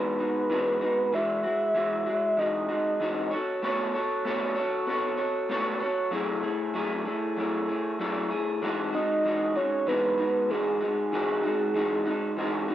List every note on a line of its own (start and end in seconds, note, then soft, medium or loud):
0.00 0.19 E3 medium
0.00 0.19 G#3 medium
0.00 0.19 D#4 medium
0.00 0.17 F#4 medium
0.00 1.16 B4 loud
0.18 0.49 G#3 soft
0.18 0.50 D#4 soft
0.18 0.50 F#4 soft
0.49 0.81 E3 medium
0.49 0.81 G#3 medium
0.49 0.81 D#4 medium
0.49 0.80 F#4 medium
0.81 1.12 G#3 soft
0.81 1.13 D#4 soft
0.81 1.12 F#4 medium
1.12 1.44 E3 medium
1.12 1.44 G#3 medium
1.12 1.42 F#4 medium
1.12 2.40 E5 loud
1.43 1.74 G#3 soft
1.43 1.75 F#4 medium
1.74 2.06 E3 medium
1.74 2.06 G#3 medium
1.74 2.05 F#4 medium
2.06 2.38 G#3 soft
2.06 2.37 F#4 medium
2.37 2.69 E3 medium
2.37 2.69 G#3 medium
2.37 2.69 D#4 medium
2.37 2.67 F#4 medium
2.37 3.32 D#5 medium
2.69 3.00 G#3 soft
2.69 3.01 D#4 soft
2.69 3.00 F#4 soft
3.00 3.31 E3 medium
3.00 3.32 G#3 medium
3.00 3.32 D#4 medium
3.00 3.33 F#4 medium
3.31 3.63 F#4 soft
3.31 3.63 A4 soft
3.31 3.62 C#5 soft
3.63 3.94 A3 medium
3.63 3.94 B3 medium
3.63 3.95 F#4 medium
3.63 3.95 A4 medium
3.63 3.93 C#5 medium
3.94 4.25 F#4 soft
3.94 4.26 A4 medium
3.94 4.25 C#5 medium
4.25 4.56 A3 medium
4.25 4.57 B3 medium
4.25 4.57 F#4 medium
4.25 4.56 A4 medium
4.25 4.54 C#5 medium
4.55 4.87 F#4 soft
4.55 4.88 A4 soft
4.55 4.87 C#5 medium
4.87 5.18 B3 medium
4.87 5.19 F#4 medium
4.87 5.18 A4 medium
4.87 5.16 C#5 medium
5.17 5.49 F#4 soft
5.17 5.50 A4 soft
5.17 5.49 C#5 soft
5.49 5.81 A3 medium
5.49 5.81 B3 medium
5.49 5.82 F#4 medium
5.49 5.81 A4 medium
5.49 5.79 C#5 medium
5.80 6.13 F#4 soft
5.80 6.13 A4 soft
5.80 6.12 C#5 medium
6.11 6.43 F#3 medium
6.11 6.44 A3 medium
6.11 6.43 E4 medium
6.11 6.41 G#4 medium
6.42 6.73 A3 soft
6.42 6.74 E4 soft
6.42 6.74 G#4 medium
6.74 7.06 F#3 medium
6.74 7.06 A3 medium
6.74 7.06 E4 medium
6.74 7.04 G#4 medium
7.05 7.37 A3 soft
7.05 7.38 E4 soft
7.05 7.37 G#4 soft
7.37 7.68 F#3 medium
7.37 7.69 A3 medium
7.37 7.69 E4 medium
7.37 7.67 G#4 medium
7.68 7.99 A3 soft
7.68 8.00 E4 soft
7.68 8.00 G#4 medium
7.99 8.31 F#3 medium
7.99 8.31 A3 medium
7.99 8.31 E4 medium
7.99 8.29 G#4 medium
8.30 8.62 A3 soft
8.30 8.63 E4 soft
8.30 8.62 G#4 medium
8.62 8.94 E3 medium
8.62 8.94 G#3 medium
8.62 8.93 D#4 medium
8.62 8.91 F#4 medium
8.93 9.24 G#3 soft
8.93 9.26 D#4 soft
8.93 9.24 F#4 medium
8.93 9.58 D#5 loud
9.24 9.56 E3 medium
9.24 9.57 G#3 medium
9.24 9.56 D#4 medium
9.24 9.54 F#4 medium
9.55 9.87 G#3 soft
9.55 9.87 D#4 soft
9.55 9.87 F#4 medium
9.55 9.90 C#5 loud
9.87 10.18 E3 medium
9.87 10.19 G#3 medium
9.87 10.19 D#4 medium
9.87 10.17 F#4 medium
9.87 10.52 B4 medium
10.18 10.50 G#3 soft
10.18 10.51 D#4 medium
10.18 10.49 F#4 medium
10.49 10.81 E3 medium
10.49 10.82 G#3 medium
10.49 10.81 D#4 medium
10.49 10.79 F#4 medium
10.49 10.81 G#4 medium
10.81 11.12 G#3 soft
10.81 11.13 D#4 soft
10.81 11.12 F#4 medium
10.81 12.65 G#4 medium
11.12 11.44 E3 medium
11.12 11.44 G#3 medium
11.12 11.44 D#4 medium
11.12 11.42 F#4 medium
11.43 11.74 G#3 soft
11.43 11.76 D#4 soft
11.43 11.75 F#4 soft
11.74 12.06 E3 medium
11.74 12.06 G#3 medium
11.74 12.06 D#4 medium
11.74 12.04 F#4 medium
12.05 12.37 G#3 soft
12.05 12.37 D#4 medium
12.05 12.37 F#4 medium
12.37 12.68 E3 medium
12.37 12.69 G#3 medium
12.37 12.69 D#4 medium
12.37 12.67 F#4 medium
12.68 12.75 G#3 soft
12.68 12.75 D#4 medium
12.68 12.75 F#4 medium